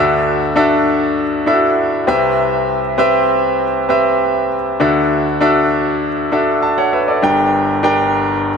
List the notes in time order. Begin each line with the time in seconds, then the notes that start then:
Already playing: D2 D3 D4 F#4 A4 E5
0.56 D4 F#4 A4 E5
1.46 D4 E4 A4 E5
1.53 F#4
2.07 C2 C3 C4 G4 B4 E5
2.98 C4 G4 B4 E5
3.89 C4 G4 B4 E5
4.80 D2 D3 D4 F#4 A4 E5
5.41 D4 F#4 A4 E5
6.32 D4 F#4 A4 E5
6.62 E5 A5
6.78 C#5 F#5
6.93 B4 E5
7.08 A4 D5
7.22 G1 G2 D4 G4 A#4 G5
7.83 D4 G4 A#4 G5